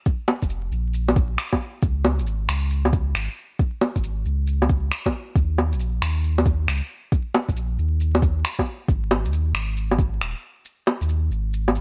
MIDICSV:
0, 0, Header, 1, 3, 480
1, 0, Start_track
1, 0, Tempo, 441176
1, 67, Time_signature, 4, 2, 24, 8
1, 12848, End_track
2, 0, Start_track
2, 0, Title_t, "Sub bass"
2, 0, Program_c, 0, 38
2, 463, Note_on_c, 0, 29, 82
2, 776, Note_off_c, 0, 29, 0
2, 781, Note_on_c, 0, 34, 101
2, 1494, Note_off_c, 0, 34, 0
2, 1984, Note_on_c, 0, 37, 95
2, 2386, Note_on_c, 0, 32, 88
2, 2402, Note_off_c, 0, 37, 0
2, 2697, Note_off_c, 0, 32, 0
2, 2702, Note_on_c, 0, 37, 99
2, 3414, Note_off_c, 0, 37, 0
2, 3427, Note_on_c, 0, 32, 95
2, 3571, Note_off_c, 0, 32, 0
2, 4309, Note_on_c, 0, 32, 84
2, 4619, Note_off_c, 0, 32, 0
2, 4627, Note_on_c, 0, 37, 97
2, 5337, Note_off_c, 0, 37, 0
2, 5826, Note_on_c, 0, 39, 97
2, 6228, Note_on_c, 0, 34, 87
2, 6245, Note_off_c, 0, 39, 0
2, 6539, Note_off_c, 0, 34, 0
2, 6547, Note_on_c, 0, 39, 100
2, 7257, Note_off_c, 0, 39, 0
2, 7267, Note_on_c, 0, 37, 94
2, 7412, Note_off_c, 0, 37, 0
2, 8146, Note_on_c, 0, 34, 84
2, 8457, Note_off_c, 0, 34, 0
2, 8468, Note_on_c, 0, 39, 94
2, 9177, Note_off_c, 0, 39, 0
2, 9663, Note_on_c, 0, 32, 97
2, 10064, Note_on_c, 0, 39, 84
2, 10081, Note_off_c, 0, 32, 0
2, 10369, Note_off_c, 0, 39, 0
2, 10375, Note_on_c, 0, 32, 101
2, 11091, Note_off_c, 0, 32, 0
2, 11104, Note_on_c, 0, 27, 99
2, 11250, Note_off_c, 0, 27, 0
2, 11979, Note_on_c, 0, 39, 81
2, 12294, Note_off_c, 0, 39, 0
2, 12300, Note_on_c, 0, 32, 103
2, 12848, Note_off_c, 0, 32, 0
2, 12848, End_track
3, 0, Start_track
3, 0, Title_t, "Drums"
3, 63, Note_on_c, 9, 82, 58
3, 66, Note_on_c, 9, 36, 110
3, 172, Note_off_c, 9, 82, 0
3, 175, Note_off_c, 9, 36, 0
3, 303, Note_on_c, 9, 61, 65
3, 411, Note_off_c, 9, 61, 0
3, 460, Note_on_c, 9, 82, 56
3, 462, Note_on_c, 9, 36, 59
3, 541, Note_off_c, 9, 82, 0
3, 541, Note_on_c, 9, 82, 57
3, 571, Note_off_c, 9, 36, 0
3, 650, Note_off_c, 9, 82, 0
3, 784, Note_on_c, 9, 82, 30
3, 893, Note_off_c, 9, 82, 0
3, 1022, Note_on_c, 9, 82, 55
3, 1131, Note_off_c, 9, 82, 0
3, 1180, Note_on_c, 9, 61, 57
3, 1262, Note_on_c, 9, 82, 56
3, 1265, Note_on_c, 9, 36, 102
3, 1289, Note_off_c, 9, 61, 0
3, 1371, Note_off_c, 9, 82, 0
3, 1374, Note_off_c, 9, 36, 0
3, 1503, Note_on_c, 9, 26, 104
3, 1503, Note_on_c, 9, 82, 53
3, 1612, Note_off_c, 9, 26, 0
3, 1612, Note_off_c, 9, 82, 0
3, 1660, Note_on_c, 9, 61, 59
3, 1662, Note_on_c, 9, 36, 58
3, 1769, Note_off_c, 9, 61, 0
3, 1771, Note_off_c, 9, 36, 0
3, 1984, Note_on_c, 9, 82, 54
3, 1985, Note_on_c, 9, 36, 110
3, 2092, Note_off_c, 9, 82, 0
3, 2094, Note_off_c, 9, 36, 0
3, 2225, Note_on_c, 9, 61, 63
3, 2334, Note_off_c, 9, 61, 0
3, 2384, Note_on_c, 9, 82, 57
3, 2465, Note_off_c, 9, 82, 0
3, 2465, Note_on_c, 9, 82, 54
3, 2574, Note_off_c, 9, 82, 0
3, 2707, Note_on_c, 9, 26, 102
3, 2707, Note_on_c, 9, 82, 29
3, 2816, Note_off_c, 9, 26, 0
3, 2816, Note_off_c, 9, 82, 0
3, 2945, Note_on_c, 9, 82, 57
3, 3053, Note_off_c, 9, 82, 0
3, 3103, Note_on_c, 9, 61, 59
3, 3187, Note_on_c, 9, 82, 51
3, 3188, Note_on_c, 9, 36, 106
3, 3211, Note_off_c, 9, 61, 0
3, 3296, Note_off_c, 9, 36, 0
3, 3296, Note_off_c, 9, 82, 0
3, 3428, Note_on_c, 9, 26, 108
3, 3428, Note_on_c, 9, 82, 56
3, 3537, Note_off_c, 9, 26, 0
3, 3537, Note_off_c, 9, 82, 0
3, 3907, Note_on_c, 9, 82, 57
3, 3910, Note_on_c, 9, 36, 109
3, 4015, Note_off_c, 9, 82, 0
3, 4018, Note_off_c, 9, 36, 0
3, 4149, Note_on_c, 9, 61, 62
3, 4258, Note_off_c, 9, 61, 0
3, 4304, Note_on_c, 9, 82, 52
3, 4307, Note_on_c, 9, 36, 57
3, 4391, Note_off_c, 9, 82, 0
3, 4391, Note_on_c, 9, 82, 53
3, 4416, Note_off_c, 9, 36, 0
3, 4500, Note_off_c, 9, 82, 0
3, 4629, Note_on_c, 9, 82, 29
3, 4737, Note_off_c, 9, 82, 0
3, 4865, Note_on_c, 9, 82, 53
3, 4974, Note_off_c, 9, 82, 0
3, 5026, Note_on_c, 9, 61, 55
3, 5106, Note_on_c, 9, 82, 53
3, 5109, Note_on_c, 9, 36, 106
3, 5135, Note_off_c, 9, 61, 0
3, 5215, Note_off_c, 9, 82, 0
3, 5217, Note_off_c, 9, 36, 0
3, 5348, Note_on_c, 9, 26, 106
3, 5348, Note_on_c, 9, 82, 55
3, 5457, Note_off_c, 9, 26, 0
3, 5457, Note_off_c, 9, 82, 0
3, 5504, Note_on_c, 9, 36, 60
3, 5508, Note_on_c, 9, 61, 55
3, 5613, Note_off_c, 9, 36, 0
3, 5616, Note_off_c, 9, 61, 0
3, 5826, Note_on_c, 9, 36, 114
3, 5830, Note_on_c, 9, 82, 55
3, 5935, Note_off_c, 9, 36, 0
3, 5939, Note_off_c, 9, 82, 0
3, 6074, Note_on_c, 9, 61, 62
3, 6183, Note_off_c, 9, 61, 0
3, 6229, Note_on_c, 9, 82, 52
3, 6310, Note_off_c, 9, 82, 0
3, 6310, Note_on_c, 9, 82, 51
3, 6418, Note_off_c, 9, 82, 0
3, 6551, Note_on_c, 9, 26, 100
3, 6551, Note_on_c, 9, 82, 29
3, 6660, Note_off_c, 9, 26, 0
3, 6660, Note_off_c, 9, 82, 0
3, 6789, Note_on_c, 9, 82, 52
3, 6898, Note_off_c, 9, 82, 0
3, 6945, Note_on_c, 9, 61, 58
3, 7026, Note_on_c, 9, 36, 98
3, 7029, Note_on_c, 9, 82, 48
3, 7053, Note_off_c, 9, 61, 0
3, 7135, Note_off_c, 9, 36, 0
3, 7138, Note_off_c, 9, 82, 0
3, 7271, Note_on_c, 9, 26, 106
3, 7271, Note_on_c, 9, 82, 54
3, 7379, Note_off_c, 9, 26, 0
3, 7379, Note_off_c, 9, 82, 0
3, 7747, Note_on_c, 9, 36, 107
3, 7750, Note_on_c, 9, 82, 51
3, 7856, Note_off_c, 9, 36, 0
3, 7858, Note_off_c, 9, 82, 0
3, 7990, Note_on_c, 9, 61, 68
3, 8099, Note_off_c, 9, 61, 0
3, 8145, Note_on_c, 9, 36, 56
3, 8150, Note_on_c, 9, 82, 49
3, 8231, Note_off_c, 9, 82, 0
3, 8231, Note_on_c, 9, 82, 54
3, 8254, Note_off_c, 9, 36, 0
3, 8340, Note_off_c, 9, 82, 0
3, 8472, Note_on_c, 9, 82, 26
3, 8581, Note_off_c, 9, 82, 0
3, 8711, Note_on_c, 9, 82, 51
3, 8819, Note_off_c, 9, 82, 0
3, 8866, Note_on_c, 9, 61, 61
3, 8947, Note_on_c, 9, 36, 94
3, 8952, Note_on_c, 9, 82, 49
3, 8974, Note_off_c, 9, 61, 0
3, 9056, Note_off_c, 9, 36, 0
3, 9061, Note_off_c, 9, 82, 0
3, 9191, Note_on_c, 9, 26, 97
3, 9191, Note_on_c, 9, 82, 51
3, 9300, Note_off_c, 9, 26, 0
3, 9300, Note_off_c, 9, 82, 0
3, 9344, Note_on_c, 9, 36, 56
3, 9348, Note_on_c, 9, 61, 55
3, 9453, Note_off_c, 9, 36, 0
3, 9457, Note_off_c, 9, 61, 0
3, 9666, Note_on_c, 9, 36, 104
3, 9674, Note_on_c, 9, 82, 55
3, 9775, Note_off_c, 9, 36, 0
3, 9783, Note_off_c, 9, 82, 0
3, 9911, Note_on_c, 9, 61, 66
3, 10020, Note_off_c, 9, 61, 0
3, 10068, Note_on_c, 9, 82, 51
3, 10149, Note_off_c, 9, 82, 0
3, 10149, Note_on_c, 9, 82, 53
3, 10258, Note_off_c, 9, 82, 0
3, 10388, Note_on_c, 9, 26, 94
3, 10388, Note_on_c, 9, 82, 29
3, 10496, Note_off_c, 9, 26, 0
3, 10496, Note_off_c, 9, 82, 0
3, 10628, Note_on_c, 9, 82, 54
3, 10737, Note_off_c, 9, 82, 0
3, 10787, Note_on_c, 9, 61, 63
3, 10865, Note_on_c, 9, 36, 96
3, 10872, Note_on_c, 9, 82, 50
3, 10896, Note_off_c, 9, 61, 0
3, 10974, Note_off_c, 9, 36, 0
3, 10980, Note_off_c, 9, 82, 0
3, 11114, Note_on_c, 9, 26, 94
3, 11114, Note_on_c, 9, 82, 52
3, 11223, Note_off_c, 9, 26, 0
3, 11223, Note_off_c, 9, 82, 0
3, 11590, Note_on_c, 9, 82, 60
3, 11699, Note_off_c, 9, 82, 0
3, 11826, Note_on_c, 9, 61, 68
3, 11935, Note_off_c, 9, 61, 0
3, 11985, Note_on_c, 9, 82, 55
3, 12066, Note_off_c, 9, 82, 0
3, 12066, Note_on_c, 9, 82, 57
3, 12175, Note_off_c, 9, 82, 0
3, 12311, Note_on_c, 9, 82, 30
3, 12420, Note_off_c, 9, 82, 0
3, 12551, Note_on_c, 9, 82, 56
3, 12659, Note_off_c, 9, 82, 0
3, 12707, Note_on_c, 9, 61, 62
3, 12788, Note_on_c, 9, 82, 53
3, 12816, Note_off_c, 9, 61, 0
3, 12848, Note_off_c, 9, 82, 0
3, 12848, End_track
0, 0, End_of_file